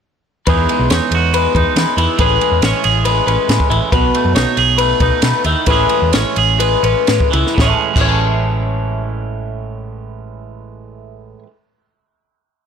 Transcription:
0.47 2.20 E2 medium
0.47 0.65 E2 medium
0.47 1.96 E3 medium
0.47 0.70 G#3 soft
0.47 0.91 D#4 medium
0.47 1.14 G#4 medium
0.47 0.90 B4 medium
0.47 kick loud
0.47 ride medium
0.69 1.36 G#3 medium
0.69 ride medium
0.79 0.88 B1 medium
0.90 0.99 E2 medium
0.90 1.55 D#4 medium
0.90 1.34 C#5 medium
0.90 snare loud
0.90 ride medium
1.11 1.46 E2 medium
1.11 2.19 F#4 medium
1.11 ride medium
1.34 1.75 G#3 medium
1.34 1.54 B4 medium
1.34 ride medium
1.55 1.64 E2 medium
1.55 2.18 D#4 medium
1.55 1.97 B4 medium
1.55 kick medium
1.55 ride medium
1.76 1.85 E3 medium
1.76 2.17 G#3 medium
1.76 snare loud
1.76 ride medium
1.97 2.06 E2 medium
1.97 2.17 E3 medium
1.97 2.20 E4 medium
1.97 ride medium
2.18 2.37 A1 medium
2.18 3.91 A2 medium
2.18 3.69 E3 medium
2.18 2.41 G#3 medium
2.18 2.63 C#4 medium
2.18 2.83 G#4 medium
2.18 2.63 B4 medium
2.18 kick loud
2.18 ride medium
2.41 3.06 G#3 medium
2.41 ride medium
2.51 2.60 E2 medium
2.62 2.71 A1 medium
2.62 3.26 C#4 medium
2.62 3.05 C#5 medium
2.62 snare loud
2.62 ride medium
2.84 3.19 A1 medium
2.84 3.90 G#4 medium
2.84 ride medium
3.05 3.49 G#3 medium
3.05 3.26 B4 medium
3.05 ride medium
3.27 3.36 A1 medium
3.27 3.90 C#4 medium
3.27 3.70 B4 medium
3.27 ride medium
3.49 3.58 A2 medium
3.49 3.90 G#3 medium
3.49 snare loud
3.49 ride medium
3.60 kick medium
3.70 3.79 A1 medium
3.70 3.90 E3 medium
3.70 3.92 E4 medium
3.70 ride medium
3.92 4.10 B1 medium
3.92 5.46 B2 medium
3.92 4.35 B4 medium
3.92 kick loud
3.92 ride medium
4.15 4.80 A3 medium
4.15 ride medium
4.25 4.33 F#2 medium
4.35 4.44 B1 medium
4.35 5.01 D#4 medium
4.35 4.78 C#5 medium
4.35 snare loud
4.35 ride medium
4.57 4.92 B1 medium
4.57 5.65 G#4 medium
4.57 ride medium
4.78 5.24 A3 medium
4.78 5.00 B4 medium
4.78 ride medium
5.00 5.10 B1 medium
5.00 5.65 D#4 medium
5.00 5.45 B4 medium
5.00 kick medium
5.00 ride medium
5.22 5.32 B2 medium
5.22 5.69 A3 medium
5.22 snare loud
5.22 ride medium
5.44 5.54 D#2 medium
5.44 5.65 D#3 medium
5.44 5.67 E4 medium
5.44 ride medium
5.66 5.85 A1 medium
5.66 7.54 A2 medium
5.66 7.29 E3 medium
5.66 5.89 G#3 medium
5.66 6.14 C#4 medium
5.66 6.13 B4 medium
5.66 kick medium
5.66 ride medium
5.71 6.37 G#4 medium
5.89 6.58 G#3 medium
5.89 ride medium
6.02 6.11 E2 medium
6.13 6.23 A1 medium
6.13 6.82 C#4 medium
6.13 6.59 C#5 medium
6.13 snare loud
6.13 ride medium
6.36 6.75 A1 medium
6.36 7.56 G#4 medium
6.36 ride medium
6.59 7.07 G#3 medium
6.59 6.83 B4 medium
6.59 ride medium
6.83 6.93 A1 medium
6.83 7.54 C#4 soft
6.83 7.33 B4 medium
6.83 ride medium
7.07 7.18 A2 medium
7.07 7.55 G#3 soft
7.07 snare loud
7.07 ride medium
7.20 kick medium
7.31 7.43 C#2 medium
7.31 7.54 E3 medium
7.31 7.58 E4 medium
7.31 ride medium
7.47 snare soft
7.55 7.72 A1 medium
7.55 7.94 A2 medium
7.55 7.96 E3 medium
7.55 kick loud
7.59 7.97 G#3 medium
7.59 8.00 C#4 medium
7.59 7.69 C#5 medium
7.59 snare medium
7.64 7.97 G#4 medium
7.64 7.76 E5 medium
7.70 7.78 A5 medium
7.94 11.34 A1 medium
7.94 11.44 A2 medium
7.94 11.46 E3 medium
7.94 kick loud
7.94 crash medium
7.98 11.48 G#3 medium
7.98 11.51 C#4 medium
7.98 11.39 C#5 medium
8.05 11.43 E5 medium
8.05 11.46 A5 medium

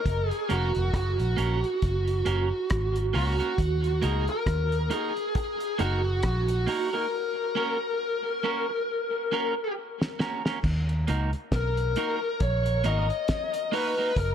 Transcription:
0.00 0.27 A#4 loud
0.06 0.30 F#1 medium
0.06 kick loud
0.06 closed hi-hat medium
0.27 0.53 G#4 loud
0.27 closed hi-hat soft
0.49 0.75 F1 medium
0.49 0.71 A#3 medium
0.49 0.71 C#4 medium
0.49 0.71 F#4 medium
0.49 0.94 F#4 medium
0.49 0.72 A#4 medium
0.49 closed hi-hat medium
0.75 0.94 F1 medium
0.75 closed hi-hat soft
0.94 1.18 F#1 medium
0.94 3.15 F#4 medium
0.94 kick loud
0.94 cross-stick medium
0.94 closed hi-hat medium
1.19 1.37 A#1 medium
1.19 closed hi-hat soft
1.37 1.62 A#1 medium
1.37 1.59 A#3 medium
1.37 1.59 C#4 medium
1.37 1.59 F#4 medium
1.37 1.60 A#4 medium
1.37 closed hi-hat medium
1.63 muted clean electric guitar stroke soft
1.63 closed hi-hat soft
1.82 2.25 F#1 loud
1.82 kick loud
1.82 closed hi-hat medium
2.08 closed hi-hat soft
2.25 2.51 F#1 medium
2.25 2.47 A#3 medium
2.25 2.47 C#4 medium
2.25 2.48 F#4 medium
2.25 2.48 A#4 medium
2.25 closed hi-hat medium
2.70 3.13 G#1 medium
2.70 kick loud
2.70 cross-stick loud
2.70 closed hi-hat medium
2.96 closed hi-hat medium
3.13 3.39 C#2 medium
3.13 3.35 A#3 medium
3.13 3.35 C#4 medium
3.13 3.36 F#4 medium
3.13 4.06 F#4 medium
3.13 3.36 A#4 medium
3.13 open hi-hat medium
3.39 3.52 A#3 soft
3.39 3.52 C#4 medium
3.39 3.52 F#4 medium
3.39 3.51 A#4 medium
3.39 closed hi-hat soft
3.58 4.01 D#2 loud
3.58 kick loud
3.58 closed hi-hat medium
3.84 closed hi-hat soft
4.02 4.27 C#2 medium
4.02 4.23 A#3 medium
4.02 4.24 D#4 medium
4.02 4.24 F#4 medium
4.02 4.29 G#4 medium
4.02 4.24 A#4 medium
4.02 closed hi-hat medium
4.28 4.88 A#4 medium
4.28 closed hi-hat soft
4.46 4.89 D#2 medium
4.46 kick medium
4.46 cross-stick medium
4.46 closed hi-hat medium
4.72 closed hi-hat medium
4.90 5.12 A#3 medium
4.90 5.12 D#4 medium
4.90 5.12 F#4 medium
4.90 5.35 G#4 medium
4.90 5.12 A#4 medium
4.90 closed hi-hat medium
5.16 muted clean electric guitar stroke soft
5.16 closed hi-hat soft
5.35 5.77 G#4 medium
5.35 kick loud
5.35 closed hi-hat medium
5.60 closed hi-hat soft
5.79 6.22 F#1 medium
5.79 6.00 A#3 medium
5.79 6.00 D#4 medium
5.79 6.01 F#4 loud
5.79 6.21 F#4 medium
5.79 6.01 A#4 medium
5.79 closed hi-hat medium
6.23 6.66 A#1 medium
6.23 6.95 F#4 medium
6.23 kick loud
6.23 cross-stick loud
6.23 closed hi-hat medium
6.48 closed hi-hat medium
6.67 6.88 A#3 medium
6.67 6.89 D#4 medium
6.67 6.89 F#4 loud
6.67 6.89 A#4 medium
6.67 open hi-hat medium
6.93 7.06 A#3 soft
6.93 7.06 D#4 medium
6.93 7.05 F#4 medium
6.93 7.05 A#4 medium
6.93 9.72 A#4 medium
7.55 7.77 A#3 medium
7.55 7.77 C#4 medium
7.55 7.77 F#4 medium
7.55 7.78 A#4 medium
8.43 8.65 A#3 medium
8.43 8.65 C#4 medium
8.43 8.65 F#4 medium
8.43 8.66 A#4 medium
8.70 muted clean electric guitar stroke soft
9.32 9.53 A#3 medium
9.32 9.53 C#4 medium
9.32 9.54 F#4 medium
9.32 9.54 A#4 loud
10.02 snare medium
10.19 10.41 A#3 medium
10.19 10.41 C#4 medium
10.19 10.42 F#4 medium
10.19 10.42 A#4 medium
10.19 snare loud
10.45 10.59 A#3 soft
10.45 10.58 C#4 medium
10.45 10.58 F#4 medium
10.45 10.58 A#4 medium
10.45 snare medium
10.64 11.06 D#2 loud
10.64 kick loud
10.64 crash medium
10.89 closed hi-hat soft
11.08 11.33 C#2 medium
11.08 11.29 A#3 medium
11.08 11.30 D#4 medium
11.08 11.30 F#4 medium
11.08 11.30 A#4 medium
11.08 closed hi-hat medium
11.33 closed hi-hat soft
11.52 11.95 B1 loud
11.52 12.44 A#4 medium
11.52 kick loud
11.52 snare loud
11.52 closed hi-hat medium
11.77 closed hi-hat soft
11.96 12.18 A#3 medium
11.96 12.18 D#4 medium
11.96 12.18 F#4 medium
11.96 12.19 A#4 medium
11.96 closed hi-hat medium
12.22 muted clean electric guitar stroke soft
12.40 12.83 A#1 loud
12.40 12.85 C#5 loud
12.40 kick loud
12.40 closed hi-hat medium
12.66 closed hi-hat medium
12.84 13.09 G#1 medium
12.84 13.05 A#3 medium
12.84 13.06 D#4 medium
12.84 13.06 F#4 medium
12.84 13.06 A#4 medium
12.84 13.76 D#5 loud
12.84 closed hi-hat medium
13.09 muted clean electric guitar stroke soft
13.09 closed hi-hat soft
13.28 kick loud
13.28 snare loud
13.28 closed hi-hat medium
13.54 closed hi-hat medium
13.72 13.93 A#3 medium
13.72 13.94 D#4 medium
13.72 13.94 F#4 medium
13.72 13.94 A#4 medium
13.72 14.17 B4 loud
13.72 open hi-hat medium
13.97 14.11 A#3 soft
13.97 14.11 D#4 medium
13.97 14.10 F#4 medium
13.97 14.10 A#4 medium
14.16 14.35 F#1 loud
14.16 14.29 A#4 loud
14.16 kick loud
14.16 closed hi-hat medium

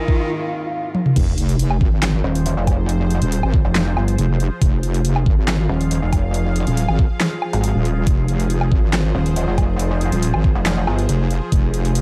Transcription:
0.00 0.27 D#3 medium
0.00 1.08 D#3 loud
0.00 riser medium
0.08 kick loud
0.30 swell medium
0.95 high tom medium
1.06 mid tom medium
1.16 1.79 F1 loud
1.16 12.01 F3 medium
1.16 12.01 F4 medium
1.16 12.01 G#4 medium
1.16 4.60 C5 medium
1.16 kick loud
1.16 closed hi-hat medium
1.16 crash loud
1.16 sub drop medium
1.38 closed hi-hat medium
1.49 closed hi-hat medium
1.59 closed hi-hat medium
1.71 low woodblock medium
1.81 2.23 G#1 loud
1.81 kick loud
2.03 snare loud
2.03 clap loud
2.03 closed hi-hat medium
2.03 low woodblock medium
2.24 2.55 D#1 loud
2.35 closed hi-hat medium
2.46 closed hi-hat medium
2.57 3.20 F1 loud
2.67 kick medium
2.67 closed hi-hat medium
2.67 low woodblock soft
2.89 closed hi-hat medium
3.10 closed hi-hat medium
3.22 3.41 D#1 loud
3.22 closed hi-hat medium
3.32 closed hi-hat medium
3.43 3.63 G#1 medium
3.43 low woodblock medium
3.54 kick loud
3.65 3.95 F1 loud
3.75 snare loud
3.75 clap loud
3.75 closed hi-hat medium
3.97 4.17 G1 loud
3.97 low woodblock medium
4.08 closed hi-hat medium
4.18 4.49 F1 loud
4.18 closed hi-hat medium
4.40 closed hi-hat medium
4.61 5.25 F1 loud
4.61 8.06 F5 medium
4.61 kick loud
4.61 closed hi-hat medium
4.83 closed hi-hat medium
4.94 closed hi-hat medium
5.05 closed hi-hat medium
5.16 low woodblock medium
5.26 5.68 G#1 loud
5.26 kick loud
5.48 snare loud
5.48 clap medium
5.48 closed hi-hat medium
5.48 low woodblock medium
5.69 6.00 D#1 loud
5.81 closed hi-hat soft
5.91 closed hi-hat medium
6.02 6.65 F1 loud
6.13 kick medium
6.13 closed hi-hat medium
6.13 low woodblock medium
6.34 closed hi-hat medium
6.56 closed hi-hat medium
6.67 6.87 D#1 loud
6.67 closed hi-hat soft
6.77 closed hi-hat medium
6.89 7.08 G#1 loud
6.89 low woodblock medium
6.99 kick loud
7.20 snare loud
7.20 clap medium
7.20 closed hi-hat medium
7.42 low woodblock medium
7.53 7.73 G#1 loud
7.53 closed hi-hat soft
7.64 closed hi-hat medium
7.75 8.05 D#1 loud
7.85 closed hi-hat medium
8.07 8.70 F1 loud
8.07 11.51 C5 medium
8.07 kick loud
8.07 closed hi-hat medium
8.28 closed hi-hat medium
8.40 closed hi-hat medium
8.50 closed hi-hat medium
8.61 low woodblock medium
8.72 9.13 G#1 loud
8.72 kick loud
8.93 snare loud
8.93 clap medium
8.93 closed hi-hat medium
8.93 low woodblock medium
9.15 9.46 D#1 loud
9.26 closed hi-hat soft
9.36 closed hi-hat medium
9.48 10.11 F1 loud
9.58 kick medium
9.58 closed hi-hat soft
9.58 low woodblock medium
9.79 closed hi-hat medium
10.01 closed hi-hat medium
10.12 10.32 D#1 loud
10.12 closed hi-hat medium
10.23 closed hi-hat medium
10.34 10.54 G#1 medium
10.34 low woodblock medium
10.44 kick loud
10.55 10.86 F1 loud
10.66 snare loud
10.66 clap medium
10.66 closed hi-hat medium
10.87 11.07 G1 loud
10.87 low woodblock medium
10.99 closed hi-hat medium
11.09 11.40 F1 medium
11.09 closed hi-hat medium
11.31 closed hi-hat medium
11.52 12.01 F1 loud
11.52 12.01 A#4 medium
11.52 kick loud
11.52 closed hi-hat medium
11.74 closed hi-hat medium
11.85 closed hi-hat medium
11.95 closed hi-hat medium

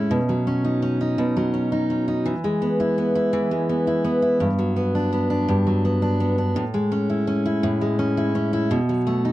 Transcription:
0.00 0.10 A2 medium
0.00 0.18 G#3 soft
0.00 0.47 C#4 soft
0.00 0.18 E4 soft
0.11 1.17 B2 medium
0.29 1.35 F#3 soft
0.47 0.81 C#4 soft
0.65 1.00 D#4 soft
0.82 1.52 C#4 soft
1.01 1.71 D#4 soft
1.18 2.33 B2 medium
1.37 2.33 F#3 soft
1.54 1.89 C#4 soft
1.72 2.07 D#4 soft
1.90 2.33 C#4 soft
2.08 2.33 D#4 soft
2.26 3.32 E3 medium
2.44 3.50 G#3 soft
2.62 2.97 B3 soft
2.80 3.14 E4 soft
2.98 3.69 B3 soft
3.15 3.86 E4 soft
3.33 4.48 E3 medium
3.51 4.48 G#3 soft
3.69 4.04 B3 soft
3.87 4.21 E4 soft
4.04 4.76 B3 soft
4.22 4.48 E4 soft
4.40 5.47 G2 medium
4.59 5.65 F#3 soft
4.76 5.11 B3 soft
4.95 5.29 D4 soft
5.13 5.84 B3 soft
5.30 6.01 D4 soft
5.48 6.56 G2 medium
5.67 6.63 F#3 soft
5.85 6.19 B3 soft
6.02 6.37 D4 soft
6.20 6.63 B3 soft
6.38 6.63 D4 soft
6.56 7.62 A2 medium
6.74 7.80 G#3 soft
6.92 7.26 C#4 soft
7.10 7.44 E4 soft
7.27 7.98 C#4 soft
7.46 8.16 E4 soft
7.63 8.71 A2 medium
7.81 8.78 G#3 soft
7.99 8.34 C#4 soft
8.17 8.52 E4 medium
8.35 8.78 C#4 soft
8.53 8.78 E4 medium
8.71 9.32 B2 medium
8.89 9.32 F#3 soft
9.07 9.32 A3 soft
9.25 9.32 D#4 soft

